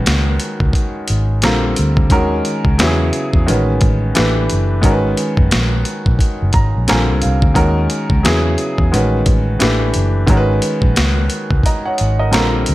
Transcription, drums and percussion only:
0.06 snare loud
0.06 closed hi-hat medium
0.40 closed hi-hat medium
0.60 kick medium
0.73 kick medium
0.73 closed hi-hat medium
1.08 closed hi-hat medium
1.42 snare loud
1.42 closed hi-hat medium
1.76 closed hi-hat medium
1.97 kick loud
2.10 kick loud
2.10 closed hi-hat medium
2.45 closed hi-hat medium
2.65 kick medium
2.79 snare loud
2.79 closed hi-hat medium
3.13 closed hi-hat medium
3.33 kick medium
3.48 closed hi-hat medium
3.81 kick loud
3.81 closed hi-hat medium
4.15 snare loud
4.15 closed hi-hat medium
4.50 closed hi-hat medium
4.83 kick loud
4.83 closed hi-hat medium
5.17 closed hi-hat medium
5.37 kick loud
5.51 snare loud
5.51 closed hi-hat medium
5.85 closed hi-hat medium
6.06 kick medium
6.19 kick medium
6.19 closed hi-hat medium
6.53 kick loud
6.53 closed hi-hat medium
6.88 snare loud
6.88 closed hi-hat medium
7.22 closed hi-hat medium
7.42 kick loud
7.55 kick loud
7.55 closed hi-hat medium
7.90 closed hi-hat medium
8.10 kick medium
8.25 snare loud
8.25 closed hi-hat medium
8.58 closed hi-hat medium
8.78 kick medium
8.94 closed hi-hat medium
9.26 kick loud
9.26 closed hi-hat medium
9.60 snare loud
9.60 closed hi-hat medium
9.94 closed hi-hat medium
10.27 kick loud
10.27 closed hi-hat medium
10.62 closed hi-hat medium
10.82 kick loud
10.96 snare loud
10.96 closed hi-hat medium
11.30 closed hi-hat medium
11.51 kick medium
11.63 kick medium
11.63 closed hi-hat medium
11.98 closed hi-hat medium
12.33 snare loud
12.33 closed hi-hat medium
12.66 closed hi-hat medium

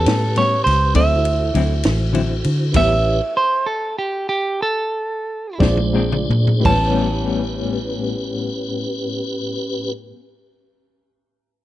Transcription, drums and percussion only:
0.06 snare loud
0.06 ride medium
0.36 ride medium
0.67 snare soft
0.67 ride medium
0.95 kick medium
0.95 ride medium
1.25 ride medium
1.55 ride medium
1.83 snare loud
1.83 ride medium
2.15 ride medium
2.44 ride medium
2.74 kick loud
2.74 crash medium
2.74 ride medium
5.60 kick medium
5.60 snare medium
5.77 high tom medium
6.12 mid tom medium
6.31 floor tom medium
6.47 floor tom medium
6.65 kick loud
6.65 crash medium

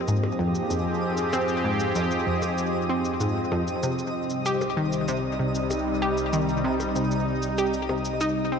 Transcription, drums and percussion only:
0.08 shaker medium
0.23 percussion blips soft
0.55 shaker soft
0.70 shaker medium
1.17 shaker soft
1.33 percussion blips soft
1.33 shaker medium
1.48 shaker soft
1.80 shaker soft
1.95 shaker medium
2.11 shaker soft
2.42 percussion blips soft
2.42 shaker soft
2.58 shaker medium
3.05 shaker soft
3.20 shaker medium
3.52 percussion blips soft
3.67 shaker soft
3.83 shaker medium
3.99 shaker soft
4.30 shaker soft
4.46 shaker medium
4.61 percussion blips soft
4.61 shaker soft
4.92 shaker soft
5.08 shaker medium
5.55 shaker soft
5.71 percussion blips soft
5.71 shaker medium
6.17 shaker soft
6.33 shaker medium
6.49 shaker soft
6.80 percussion blips soft
6.80 shaker soft
6.96 shaker medium
7.11 shaker soft
7.42 shaker soft
7.58 shaker medium
7.74 shaker soft
7.89 percussion blips soft
8.05 shaker soft
8.21 shaker medium

